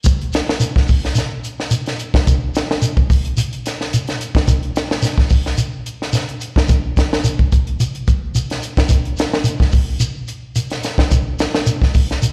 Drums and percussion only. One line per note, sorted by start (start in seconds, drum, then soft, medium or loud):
0.04 kick loud
0.04 closed hi-hat medium
0.04 shekere loud
0.21 closed hi-hat soft
0.32 snare medium
0.32 closed hi-hat medium
0.32 shekere soft
0.49 snare medium
0.60 closed hi-hat medium
0.60 shekere medium
0.76 kick medium
0.76 snare soft
0.88 kick medium
0.88 open hi-hat medium
0.88 shekere soft
1.05 snare soft
1.15 snare soft
1.15 closed hi-hat medium
1.15 shekere medium
1.44 closed hi-hat medium
1.44 shekere soft
1.60 snare soft
1.71 closed hi-hat medium
1.71 shekere loud
1.86 snare soft
1.86 closed hi-hat soft
1.99 closed hi-hat soft
1.99 shekere soft
2.14 kick medium
2.14 snare medium
2.27 kick loud
2.27 closed hi-hat medium
2.27 shekere medium
2.54 snare medium
2.54 closed hi-hat medium
2.54 shekere soft
2.71 snare medium
2.82 closed hi-hat medium
2.82 shekere loud
2.97 kick medium
3.10 kick medium
3.10 open hi-hat medium
3.10 shekere soft
3.25 closed hi-hat soft
3.37 closed hi-hat medium
3.37 shekere loud
3.53 closed hi-hat soft
3.66 snare soft
3.66 closed hi-hat medium
3.66 shekere soft
3.81 snare soft
3.93 closed hi-hat medium
3.93 shekere medium
4.07 snare soft
4.07 closed hi-hat soft
4.21 closed hi-hat medium
4.21 shekere soft
4.35 kick medium
4.35 snare medium
4.35 closed hi-hat soft
4.48 kick loud
4.48 closed hi-hat medium
4.48 shekere medium
4.63 closed hi-hat soft
4.76 snare medium
4.76 closed hi-hat medium
4.76 shekere soft
4.91 snare medium
5.02 snare soft
5.02 closed hi-hat medium
5.02 shekere loud
5.18 kick medium
5.18 snare soft
5.30 kick medium
5.30 open hi-hat medium
5.30 shekere soft
5.46 snare soft
5.58 closed hi-hat medium
5.58 shekere medium
5.86 closed hi-hat medium
5.86 shekere soft
6.02 snare soft
6.13 snare soft
6.13 closed hi-hat medium
6.13 shekere medium
6.29 closed hi-hat soft
6.40 closed hi-hat medium
6.40 shekere soft
6.56 kick medium
6.56 snare medium
6.68 kick loud
6.68 closed hi-hat medium
6.68 shekere medium
6.97 kick medium
6.97 snare medium
6.97 closed hi-hat medium
6.97 shekere soft
7.13 snare medium
7.24 closed hi-hat medium
7.24 shekere loud
7.39 kick medium
7.52 kick medium
7.52 closed hi-hat medium
7.52 shekere soft
7.67 closed hi-hat soft
7.80 closed hi-hat medium
7.80 shekere medium
7.95 closed hi-hat soft
8.07 kick medium
8.07 closed hi-hat medium
8.07 shekere soft
8.35 closed hi-hat medium
8.35 shekere medium
8.50 snare soft
8.50 closed hi-hat soft
8.62 closed hi-hat medium
8.62 shekere soft
8.77 kick medium
8.77 snare medium
8.77 closed hi-hat soft
8.89 kick loud
8.89 closed hi-hat medium
8.89 shekere loud
9.05 closed hi-hat soft
9.17 snare medium
9.17 closed hi-hat medium
9.17 shekere soft
9.34 snare medium
9.44 closed hi-hat medium
9.44 shekere loud
9.60 kick medium
9.60 snare soft
9.72 kick medium
9.72 open hi-hat medium
9.72 shekere soft
10.00 closed hi-hat medium
10.00 shekere loud
10.27 closed hi-hat medium
10.27 shekere soft
10.56 closed hi-hat medium
10.56 shekere medium
10.70 snare soft
10.70 closed hi-hat soft
10.83 snare soft
10.83 closed hi-hat medium
10.83 shekere soft
10.98 kick medium
10.98 snare medium
11.11 kick medium
11.11 closed hi-hat medium
11.11 shekere medium
11.39 snare medium
11.39 closed hi-hat medium
11.39 shekere soft
11.55 snare medium
11.67 closed hi-hat medium
11.67 shekere loud
11.82 kick medium
11.82 snare soft
11.94 kick medium
11.94 open hi-hat medium
11.94 shekere soft
12.10 snare soft
12.10 closed hi-hat soft
12.22 closed hi-hat medium
12.22 shekere medium